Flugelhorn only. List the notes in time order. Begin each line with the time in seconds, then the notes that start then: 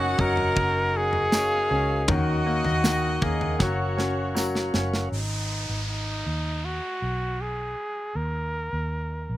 Already playing: F#4
0.20 A#4
0.97 G#4
2.10 F#4
3.24 G#4
3.63 F#4
5.12 D#4
5.89 D#4
6.65 F#4
7.41 G#4
8.16 A#4